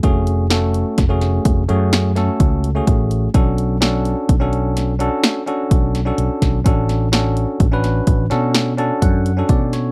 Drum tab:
HH |xxxxxxxxxxxxxx|xxxxxxxxxxxxxx|xxxxxxxxxxxxxx|
SD |--o-oo--oo----|--o---o-o--o-o|-oo--o-oo----o|
BD |o---o-o---o-o-|o---o-----o--o|o---o-o---o-o-|